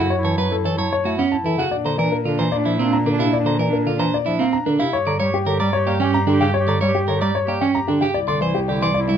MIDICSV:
0, 0, Header, 1, 6, 480
1, 0, Start_track
1, 0, Tempo, 535714
1, 100, Time_signature, 3, 2, 24, 8
1, 8221, End_track
2, 0, Start_track
2, 0, Title_t, "Grand piano"
2, 0, Program_c, 0, 0
2, 0, Note_on_c, 0, 78, 72
2, 93, Note_on_c, 0, 73, 90
2, 134, Note_off_c, 0, 78, 0
2, 216, Note_on_c, 0, 81, 77
2, 254, Note_off_c, 0, 73, 0
2, 338, Note_on_c, 0, 73, 79
2, 375, Note_off_c, 0, 81, 0
2, 465, Note_on_c, 0, 69, 93
2, 496, Note_off_c, 0, 73, 0
2, 583, Note_on_c, 0, 73, 68
2, 618, Note_off_c, 0, 69, 0
2, 702, Note_on_c, 0, 81, 80
2, 737, Note_off_c, 0, 73, 0
2, 829, Note_on_c, 0, 73, 98
2, 857, Note_off_c, 0, 81, 0
2, 951, Note_on_c, 0, 76, 67
2, 980, Note_off_c, 0, 73, 0
2, 1068, Note_on_c, 0, 78, 62
2, 1100, Note_off_c, 0, 76, 0
2, 1180, Note_on_c, 0, 81, 91
2, 1219, Note_off_c, 0, 78, 0
2, 1304, Note_on_c, 0, 69, 77
2, 1336, Note_off_c, 0, 81, 0
2, 1419, Note_on_c, 0, 78, 75
2, 1458, Note_off_c, 0, 69, 0
2, 1536, Note_on_c, 0, 74, 94
2, 1576, Note_off_c, 0, 78, 0
2, 1660, Note_on_c, 0, 82, 80
2, 1695, Note_off_c, 0, 74, 0
2, 1774, Note_on_c, 0, 74, 82
2, 1816, Note_off_c, 0, 82, 0
2, 1900, Note_on_c, 0, 70, 87
2, 1934, Note_off_c, 0, 74, 0
2, 2023, Note_on_c, 0, 74, 64
2, 2056, Note_off_c, 0, 70, 0
2, 2140, Note_on_c, 0, 82, 79
2, 2178, Note_off_c, 0, 74, 0
2, 2257, Note_on_c, 0, 74, 109
2, 2296, Note_off_c, 0, 82, 0
2, 2377, Note_on_c, 0, 76, 71
2, 2415, Note_off_c, 0, 74, 0
2, 2506, Note_on_c, 0, 77, 60
2, 2535, Note_off_c, 0, 76, 0
2, 2624, Note_on_c, 0, 82, 91
2, 2658, Note_off_c, 0, 77, 0
2, 2750, Note_on_c, 0, 70, 69
2, 2778, Note_off_c, 0, 82, 0
2, 2869, Note_on_c, 0, 77, 72
2, 2900, Note_off_c, 0, 70, 0
2, 2986, Note_on_c, 0, 74, 101
2, 3019, Note_off_c, 0, 77, 0
2, 3104, Note_on_c, 0, 82, 82
2, 3138, Note_off_c, 0, 74, 0
2, 3230, Note_on_c, 0, 74, 77
2, 3258, Note_off_c, 0, 82, 0
2, 3341, Note_on_c, 0, 70, 83
2, 3380, Note_off_c, 0, 74, 0
2, 3462, Note_on_c, 0, 74, 69
2, 3497, Note_off_c, 0, 70, 0
2, 3581, Note_on_c, 0, 82, 89
2, 3617, Note_off_c, 0, 74, 0
2, 3711, Note_on_c, 0, 74, 99
2, 3737, Note_off_c, 0, 82, 0
2, 3818, Note_on_c, 0, 76, 70
2, 3860, Note_off_c, 0, 74, 0
2, 3946, Note_on_c, 0, 77, 67
2, 3976, Note_off_c, 0, 76, 0
2, 4057, Note_on_c, 0, 82, 98
2, 4098, Note_off_c, 0, 77, 0
2, 4178, Note_on_c, 0, 70, 68
2, 4215, Note_off_c, 0, 82, 0
2, 4293, Note_on_c, 0, 77, 76
2, 4336, Note_off_c, 0, 70, 0
2, 4420, Note_on_c, 0, 73, 103
2, 4454, Note_off_c, 0, 77, 0
2, 4545, Note_on_c, 0, 82, 82
2, 4576, Note_off_c, 0, 73, 0
2, 4659, Note_on_c, 0, 73, 80
2, 4698, Note_off_c, 0, 82, 0
2, 4783, Note_on_c, 0, 67, 94
2, 4816, Note_off_c, 0, 73, 0
2, 4896, Note_on_c, 0, 73, 64
2, 4937, Note_off_c, 0, 67, 0
2, 5018, Note_on_c, 0, 82, 82
2, 5055, Note_off_c, 0, 73, 0
2, 5134, Note_on_c, 0, 73, 104
2, 5176, Note_off_c, 0, 82, 0
2, 5294, Note_off_c, 0, 73, 0
2, 5384, Note_on_c, 0, 79, 62
2, 5503, Note_on_c, 0, 82, 107
2, 5538, Note_off_c, 0, 79, 0
2, 5622, Note_on_c, 0, 67, 77
2, 5657, Note_off_c, 0, 82, 0
2, 5740, Note_on_c, 0, 79, 75
2, 5777, Note_off_c, 0, 67, 0
2, 5859, Note_on_c, 0, 73, 102
2, 5896, Note_off_c, 0, 79, 0
2, 5989, Note_on_c, 0, 82, 77
2, 6016, Note_off_c, 0, 73, 0
2, 6113, Note_on_c, 0, 73, 85
2, 6140, Note_off_c, 0, 82, 0
2, 6224, Note_on_c, 0, 67, 100
2, 6261, Note_off_c, 0, 73, 0
2, 6353, Note_on_c, 0, 73, 76
2, 6378, Note_off_c, 0, 67, 0
2, 6467, Note_on_c, 0, 82, 86
2, 6501, Note_off_c, 0, 73, 0
2, 6585, Note_on_c, 0, 73, 98
2, 6619, Note_off_c, 0, 82, 0
2, 6707, Note_on_c, 0, 74, 71
2, 6738, Note_off_c, 0, 73, 0
2, 6819, Note_on_c, 0, 79, 70
2, 6859, Note_off_c, 0, 74, 0
2, 6942, Note_on_c, 0, 82, 101
2, 6976, Note_off_c, 0, 79, 0
2, 7057, Note_on_c, 0, 67, 79
2, 7097, Note_off_c, 0, 82, 0
2, 7177, Note_on_c, 0, 79, 74
2, 7215, Note_off_c, 0, 67, 0
2, 7296, Note_on_c, 0, 74, 105
2, 7335, Note_off_c, 0, 79, 0
2, 7415, Note_on_c, 0, 84, 88
2, 7455, Note_off_c, 0, 74, 0
2, 7535, Note_on_c, 0, 74, 82
2, 7575, Note_off_c, 0, 84, 0
2, 7657, Note_on_c, 0, 67, 97
2, 7694, Note_off_c, 0, 74, 0
2, 7779, Note_on_c, 0, 74, 78
2, 7815, Note_off_c, 0, 67, 0
2, 7904, Note_on_c, 0, 84, 89
2, 7936, Note_off_c, 0, 74, 0
2, 8013, Note_on_c, 0, 74, 102
2, 8058, Note_off_c, 0, 84, 0
2, 8135, Note_on_c, 0, 76, 69
2, 8174, Note_off_c, 0, 74, 0
2, 8221, Note_off_c, 0, 76, 0
2, 8221, End_track
3, 0, Start_track
3, 0, Title_t, "Clean electric guitar"
3, 0, Program_c, 1, 27
3, 0, Note_on_c, 1, 66, 98
3, 136, Note_off_c, 1, 66, 0
3, 221, Note_on_c, 1, 73, 74
3, 338, Note_off_c, 1, 73, 0
3, 341, Note_on_c, 1, 71, 93
3, 497, Note_off_c, 1, 71, 0
3, 586, Note_on_c, 1, 69, 81
3, 699, Note_off_c, 1, 69, 0
3, 703, Note_on_c, 1, 73, 100
3, 857, Note_off_c, 1, 73, 0
3, 944, Note_on_c, 1, 66, 83
3, 1065, Note_on_c, 1, 61, 112
3, 1098, Note_off_c, 1, 66, 0
3, 1218, Note_off_c, 1, 61, 0
3, 1306, Note_on_c, 1, 64, 76
3, 1427, Note_on_c, 1, 66, 103
3, 1458, Note_off_c, 1, 64, 0
3, 1579, Note_off_c, 1, 66, 0
3, 1664, Note_on_c, 1, 72, 74
3, 1780, Note_off_c, 1, 72, 0
3, 1783, Note_on_c, 1, 70, 88
3, 1938, Note_off_c, 1, 70, 0
3, 2020, Note_on_c, 1, 65, 77
3, 2140, Note_on_c, 1, 72, 94
3, 2176, Note_off_c, 1, 65, 0
3, 2296, Note_off_c, 1, 72, 0
3, 2378, Note_on_c, 1, 64, 77
3, 2503, Note_on_c, 1, 60, 104
3, 2536, Note_off_c, 1, 64, 0
3, 2657, Note_off_c, 1, 60, 0
3, 2743, Note_on_c, 1, 62, 80
3, 2867, Note_on_c, 1, 64, 108
3, 2897, Note_off_c, 1, 62, 0
3, 3019, Note_off_c, 1, 64, 0
3, 3101, Note_on_c, 1, 72, 80
3, 3216, Note_off_c, 1, 72, 0
3, 3220, Note_on_c, 1, 70, 81
3, 3376, Note_off_c, 1, 70, 0
3, 3465, Note_on_c, 1, 65, 84
3, 3579, Note_on_c, 1, 72, 95
3, 3618, Note_off_c, 1, 65, 0
3, 3736, Note_off_c, 1, 72, 0
3, 3816, Note_on_c, 1, 64, 82
3, 3935, Note_on_c, 1, 60, 113
3, 3975, Note_off_c, 1, 64, 0
3, 4095, Note_off_c, 1, 60, 0
3, 4177, Note_on_c, 1, 62, 84
3, 4299, Note_on_c, 1, 64, 100
3, 4335, Note_off_c, 1, 62, 0
3, 4456, Note_off_c, 1, 64, 0
3, 4540, Note_on_c, 1, 74, 78
3, 4652, Note_off_c, 1, 74, 0
3, 4655, Note_on_c, 1, 73, 87
3, 4815, Note_off_c, 1, 73, 0
3, 4897, Note_on_c, 1, 70, 85
3, 5012, Note_off_c, 1, 70, 0
3, 5016, Note_on_c, 1, 74, 100
3, 5175, Note_off_c, 1, 74, 0
3, 5257, Note_on_c, 1, 67, 81
3, 5374, Note_on_c, 1, 61, 107
3, 5415, Note_off_c, 1, 67, 0
3, 5534, Note_off_c, 1, 61, 0
3, 5617, Note_on_c, 1, 62, 85
3, 5742, Note_on_c, 1, 67, 93
3, 5775, Note_off_c, 1, 62, 0
3, 5897, Note_off_c, 1, 67, 0
3, 5983, Note_on_c, 1, 74, 78
3, 6099, Note_off_c, 1, 74, 0
3, 6102, Note_on_c, 1, 73, 88
3, 6257, Note_off_c, 1, 73, 0
3, 6342, Note_on_c, 1, 70, 81
3, 6461, Note_off_c, 1, 70, 0
3, 6464, Note_on_c, 1, 74, 101
3, 6618, Note_off_c, 1, 74, 0
3, 6705, Note_on_c, 1, 67, 81
3, 6823, Note_on_c, 1, 61, 99
3, 6858, Note_off_c, 1, 67, 0
3, 6977, Note_off_c, 1, 61, 0
3, 7063, Note_on_c, 1, 62, 81
3, 7187, Note_on_c, 1, 67, 95
3, 7217, Note_off_c, 1, 62, 0
3, 7339, Note_off_c, 1, 67, 0
3, 7421, Note_on_c, 1, 74, 87
3, 7540, Note_off_c, 1, 74, 0
3, 7544, Note_on_c, 1, 72, 93
3, 7698, Note_off_c, 1, 72, 0
3, 7787, Note_on_c, 1, 67, 84
3, 7907, Note_on_c, 1, 74, 101
3, 7939, Note_off_c, 1, 67, 0
3, 8059, Note_off_c, 1, 74, 0
3, 8144, Note_on_c, 1, 64, 83
3, 8221, Note_off_c, 1, 64, 0
3, 8221, End_track
4, 0, Start_track
4, 0, Title_t, "Clarinet"
4, 0, Program_c, 2, 71
4, 0, Note_on_c, 2, 64, 94
4, 93, Note_off_c, 2, 64, 0
4, 165, Note_on_c, 2, 64, 81
4, 341, Note_off_c, 2, 64, 0
4, 408, Note_on_c, 2, 64, 74
4, 587, Note_off_c, 2, 64, 0
4, 673, Note_on_c, 2, 64, 72
4, 847, Note_off_c, 2, 64, 0
4, 919, Note_on_c, 2, 64, 62
4, 1095, Note_off_c, 2, 64, 0
4, 1173, Note_on_c, 2, 64, 49
4, 1348, Note_off_c, 2, 64, 0
4, 1555, Note_on_c, 2, 62, 43
4, 1725, Note_off_c, 2, 62, 0
4, 1798, Note_on_c, 2, 62, 59
4, 1971, Note_off_c, 2, 62, 0
4, 2039, Note_on_c, 2, 62, 69
4, 2216, Note_off_c, 2, 62, 0
4, 2289, Note_on_c, 2, 62, 83
4, 2466, Note_off_c, 2, 62, 0
4, 2538, Note_on_c, 2, 62, 91
4, 2716, Note_off_c, 2, 62, 0
4, 2799, Note_on_c, 2, 62, 102
4, 2973, Note_off_c, 2, 62, 0
4, 3041, Note_on_c, 2, 62, 79
4, 3218, Note_off_c, 2, 62, 0
4, 3296, Note_on_c, 2, 62, 81
4, 3472, Note_off_c, 2, 62, 0
4, 3547, Note_on_c, 2, 62, 75
4, 3723, Note_off_c, 2, 62, 0
4, 3790, Note_on_c, 2, 62, 57
4, 3969, Note_off_c, 2, 62, 0
4, 4040, Note_on_c, 2, 62, 42
4, 4219, Note_off_c, 2, 62, 0
4, 4414, Note_on_c, 2, 67, 42
4, 4592, Note_off_c, 2, 67, 0
4, 4660, Note_on_c, 2, 67, 58
4, 4839, Note_off_c, 2, 67, 0
4, 4914, Note_on_c, 2, 67, 71
4, 5092, Note_off_c, 2, 67, 0
4, 5159, Note_on_c, 2, 67, 80
4, 5340, Note_off_c, 2, 67, 0
4, 5409, Note_on_c, 2, 67, 94
4, 5590, Note_off_c, 2, 67, 0
4, 5673, Note_on_c, 2, 67, 100
4, 5849, Note_off_c, 2, 67, 0
4, 5912, Note_on_c, 2, 67, 89
4, 6093, Note_off_c, 2, 67, 0
4, 6164, Note_on_c, 2, 67, 85
4, 6344, Note_off_c, 2, 67, 0
4, 6417, Note_on_c, 2, 67, 73
4, 6597, Note_off_c, 2, 67, 0
4, 6674, Note_on_c, 2, 67, 62
4, 6851, Note_off_c, 2, 67, 0
4, 6927, Note_on_c, 2, 67, 49
4, 7104, Note_off_c, 2, 67, 0
4, 7297, Note_on_c, 2, 64, 43
4, 7474, Note_off_c, 2, 64, 0
4, 7555, Note_on_c, 2, 64, 58
4, 7729, Note_off_c, 2, 64, 0
4, 7800, Note_on_c, 2, 64, 70
4, 7976, Note_off_c, 2, 64, 0
4, 8053, Note_on_c, 2, 64, 90
4, 8221, Note_off_c, 2, 64, 0
4, 8221, End_track
5, 0, Start_track
5, 0, Title_t, "Bass clarinet"
5, 0, Program_c, 3, 71
5, 217, Note_on_c, 3, 52, 82
5, 308, Note_off_c, 3, 52, 0
5, 335, Note_on_c, 3, 54, 93
5, 427, Note_off_c, 3, 54, 0
5, 576, Note_on_c, 3, 52, 83
5, 668, Note_off_c, 3, 52, 0
5, 698, Note_on_c, 3, 54, 77
5, 789, Note_off_c, 3, 54, 0
5, 935, Note_on_c, 3, 57, 74
5, 1027, Note_off_c, 3, 57, 0
5, 1048, Note_on_c, 3, 59, 77
5, 1143, Note_off_c, 3, 59, 0
5, 1289, Note_on_c, 3, 52, 81
5, 1383, Note_off_c, 3, 52, 0
5, 1411, Note_on_c, 3, 49, 86
5, 1505, Note_off_c, 3, 49, 0
5, 1655, Note_on_c, 3, 50, 81
5, 1747, Note_off_c, 3, 50, 0
5, 1776, Note_on_c, 3, 52, 84
5, 1868, Note_off_c, 3, 52, 0
5, 2019, Note_on_c, 3, 50, 83
5, 2110, Note_off_c, 3, 50, 0
5, 2143, Note_on_c, 3, 52, 89
5, 2232, Note_off_c, 3, 52, 0
5, 2378, Note_on_c, 3, 53, 71
5, 2469, Note_off_c, 3, 53, 0
5, 2497, Note_on_c, 3, 58, 78
5, 2588, Note_off_c, 3, 58, 0
5, 2740, Note_on_c, 3, 50, 77
5, 2830, Note_off_c, 3, 50, 0
5, 2856, Note_on_c, 3, 48, 80
5, 2948, Note_off_c, 3, 48, 0
5, 3093, Note_on_c, 3, 50, 79
5, 3186, Note_off_c, 3, 50, 0
5, 3212, Note_on_c, 3, 52, 82
5, 3305, Note_off_c, 3, 52, 0
5, 3456, Note_on_c, 3, 50, 85
5, 3547, Note_off_c, 3, 50, 0
5, 3573, Note_on_c, 3, 52, 81
5, 3666, Note_off_c, 3, 52, 0
5, 3817, Note_on_c, 3, 53, 74
5, 3908, Note_off_c, 3, 53, 0
5, 3935, Note_on_c, 3, 58, 76
5, 4027, Note_off_c, 3, 58, 0
5, 4181, Note_on_c, 3, 50, 76
5, 4271, Note_off_c, 3, 50, 0
5, 4298, Note_on_c, 3, 48, 76
5, 4389, Note_off_c, 3, 48, 0
5, 4541, Note_on_c, 3, 50, 88
5, 4631, Note_off_c, 3, 50, 0
5, 4656, Note_on_c, 3, 55, 81
5, 4748, Note_off_c, 3, 55, 0
5, 4892, Note_on_c, 3, 50, 80
5, 4985, Note_off_c, 3, 50, 0
5, 5018, Note_on_c, 3, 55, 85
5, 5109, Note_off_c, 3, 55, 0
5, 5252, Note_on_c, 3, 58, 72
5, 5345, Note_off_c, 3, 58, 0
5, 5377, Note_on_c, 3, 61, 76
5, 5469, Note_off_c, 3, 61, 0
5, 5617, Note_on_c, 3, 50, 77
5, 5708, Note_off_c, 3, 50, 0
5, 5740, Note_on_c, 3, 49, 88
5, 5830, Note_off_c, 3, 49, 0
5, 5977, Note_on_c, 3, 50, 80
5, 6069, Note_off_c, 3, 50, 0
5, 6102, Note_on_c, 3, 55, 87
5, 6192, Note_off_c, 3, 55, 0
5, 6342, Note_on_c, 3, 50, 81
5, 6431, Note_off_c, 3, 50, 0
5, 6460, Note_on_c, 3, 55, 86
5, 6550, Note_off_c, 3, 55, 0
5, 6696, Note_on_c, 3, 58, 70
5, 6787, Note_off_c, 3, 58, 0
5, 6816, Note_on_c, 3, 61, 76
5, 6908, Note_off_c, 3, 61, 0
5, 7062, Note_on_c, 3, 50, 77
5, 7151, Note_off_c, 3, 50, 0
5, 7177, Note_on_c, 3, 49, 77
5, 7268, Note_off_c, 3, 49, 0
5, 7423, Note_on_c, 3, 50, 89
5, 7512, Note_off_c, 3, 50, 0
5, 7544, Note_on_c, 3, 52, 89
5, 7632, Note_off_c, 3, 52, 0
5, 7785, Note_on_c, 3, 50, 82
5, 7874, Note_off_c, 3, 50, 0
5, 7901, Note_on_c, 3, 52, 84
5, 7991, Note_off_c, 3, 52, 0
5, 8149, Note_on_c, 3, 55, 75
5, 8221, Note_off_c, 3, 55, 0
5, 8221, End_track
6, 0, Start_track
6, 0, Title_t, "Cello"
6, 0, Program_c, 4, 42
6, 0, Note_on_c, 4, 42, 74
6, 1411, Note_off_c, 4, 42, 0
6, 1543, Note_on_c, 4, 46, 74
6, 4290, Note_off_c, 4, 46, 0
6, 4422, Note_on_c, 4, 43, 75
6, 7170, Note_off_c, 4, 43, 0
6, 7308, Note_on_c, 4, 36, 75
6, 8221, Note_off_c, 4, 36, 0
6, 8221, End_track
0, 0, End_of_file